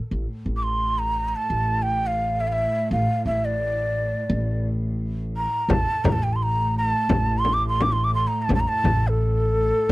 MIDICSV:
0, 0, Header, 1, 5, 480
1, 0, Start_track
1, 0, Tempo, 699301
1, 72, Time_signature, 4, 2, 24, 8
1, 6808, End_track
2, 0, Start_track
2, 0, Title_t, "Ney"
2, 0, Program_c, 0, 77
2, 389, Note_on_c, 0, 86, 70
2, 433, Note_on_c, 0, 84, 90
2, 443, Note_off_c, 0, 86, 0
2, 676, Note_on_c, 0, 82, 90
2, 687, Note_off_c, 0, 84, 0
2, 881, Note_off_c, 0, 82, 0
2, 881, Note_on_c, 0, 82, 69
2, 934, Note_on_c, 0, 81, 86
2, 944, Note_off_c, 0, 82, 0
2, 1252, Note_on_c, 0, 79, 89
2, 1262, Note_off_c, 0, 81, 0
2, 1419, Note_on_c, 0, 77, 82
2, 1429, Note_off_c, 0, 79, 0
2, 1651, Note_on_c, 0, 76, 91
2, 1661, Note_off_c, 0, 77, 0
2, 1698, Note_on_c, 0, 77, 75
2, 1708, Note_off_c, 0, 76, 0
2, 1733, Note_on_c, 0, 76, 90
2, 1744, Note_off_c, 0, 77, 0
2, 1999, Note_off_c, 0, 76, 0
2, 2006, Note_on_c, 0, 77, 89
2, 2226, Note_off_c, 0, 77, 0
2, 2240, Note_on_c, 0, 76, 83
2, 2368, Note_on_c, 0, 74, 80
2, 2378, Note_off_c, 0, 76, 0
2, 3205, Note_off_c, 0, 74, 0
2, 3683, Note_on_c, 0, 82, 89
2, 3914, Note_on_c, 0, 81, 106
2, 3924, Note_off_c, 0, 82, 0
2, 4147, Note_on_c, 0, 82, 80
2, 4158, Note_off_c, 0, 81, 0
2, 4205, Note_on_c, 0, 81, 87
2, 4215, Note_off_c, 0, 82, 0
2, 4278, Note_on_c, 0, 79, 80
2, 4288, Note_off_c, 0, 81, 0
2, 4345, Note_on_c, 0, 81, 75
2, 4355, Note_off_c, 0, 79, 0
2, 4357, Note_on_c, 0, 84, 73
2, 4367, Note_off_c, 0, 81, 0
2, 4413, Note_on_c, 0, 82, 102
2, 4423, Note_off_c, 0, 84, 0
2, 4646, Note_off_c, 0, 82, 0
2, 4654, Note_on_c, 0, 81, 109
2, 5069, Note_on_c, 0, 84, 104
2, 5079, Note_off_c, 0, 81, 0
2, 5172, Note_on_c, 0, 86, 106
2, 5182, Note_off_c, 0, 84, 0
2, 5263, Note_off_c, 0, 86, 0
2, 5276, Note_on_c, 0, 84, 96
2, 5367, Note_on_c, 0, 86, 99
2, 5378, Note_off_c, 0, 84, 0
2, 5439, Note_on_c, 0, 84, 100
2, 5449, Note_off_c, 0, 86, 0
2, 5520, Note_on_c, 0, 86, 101
2, 5531, Note_off_c, 0, 84, 0
2, 5585, Note_off_c, 0, 86, 0
2, 5594, Note_on_c, 0, 84, 104
2, 5679, Note_on_c, 0, 82, 93
2, 5689, Note_off_c, 0, 84, 0
2, 5778, Note_on_c, 0, 81, 93
2, 5789, Note_off_c, 0, 82, 0
2, 5855, Note_off_c, 0, 81, 0
2, 5869, Note_on_c, 0, 81, 101
2, 5904, Note_on_c, 0, 82, 92
2, 5914, Note_off_c, 0, 81, 0
2, 5961, Note_on_c, 0, 81, 111
2, 5971, Note_off_c, 0, 82, 0
2, 6233, Note_on_c, 0, 69, 91
2, 6243, Note_off_c, 0, 81, 0
2, 6808, Note_off_c, 0, 69, 0
2, 6808, End_track
3, 0, Start_track
3, 0, Title_t, "Cello section"
3, 0, Program_c, 1, 48
3, 79, Note_on_c, 1, 45, 63
3, 3900, Note_off_c, 1, 45, 0
3, 3908, Note_on_c, 1, 45, 73
3, 6808, Note_off_c, 1, 45, 0
3, 6808, End_track
4, 0, Start_track
4, 0, Title_t, "Upright bass"
4, 0, Program_c, 2, 32
4, 78, Note_on_c, 2, 33, 83
4, 174, Note_off_c, 2, 33, 0
4, 314, Note_on_c, 2, 33, 79
4, 906, Note_off_c, 2, 33, 0
4, 1029, Note_on_c, 2, 33, 90
4, 1821, Note_off_c, 2, 33, 0
4, 1997, Note_on_c, 2, 33, 92
4, 2096, Note_off_c, 2, 33, 0
4, 2234, Note_on_c, 2, 33, 74
4, 2827, Note_off_c, 2, 33, 0
4, 2948, Note_on_c, 2, 33, 101
4, 3741, Note_off_c, 2, 33, 0
4, 3903, Note_on_c, 2, 33, 96
4, 4008, Note_off_c, 2, 33, 0
4, 4149, Note_on_c, 2, 33, 88
4, 4743, Note_off_c, 2, 33, 0
4, 4868, Note_on_c, 2, 33, 103
4, 5659, Note_off_c, 2, 33, 0
4, 5828, Note_on_c, 2, 33, 105
4, 5930, Note_off_c, 2, 33, 0
4, 6068, Note_on_c, 2, 33, 86
4, 6662, Note_off_c, 2, 33, 0
4, 6808, End_track
5, 0, Start_track
5, 0, Title_t, "Frame drum"
5, 3911, Note_on_c, 9, 64, 99
5, 3980, Note_off_c, 9, 64, 0
5, 4153, Note_on_c, 9, 64, 97
5, 4222, Note_off_c, 9, 64, 0
5, 4872, Note_on_c, 9, 64, 95
5, 4941, Note_off_c, 9, 64, 0
5, 5112, Note_on_c, 9, 64, 67
5, 5181, Note_off_c, 9, 64, 0
5, 5358, Note_on_c, 9, 64, 70
5, 5427, Note_off_c, 9, 64, 0
5, 5836, Note_on_c, 9, 64, 84
5, 5905, Note_off_c, 9, 64, 0
5, 6074, Note_on_c, 9, 64, 82
5, 6143, Note_off_c, 9, 64, 0
5, 6808, End_track
0, 0, End_of_file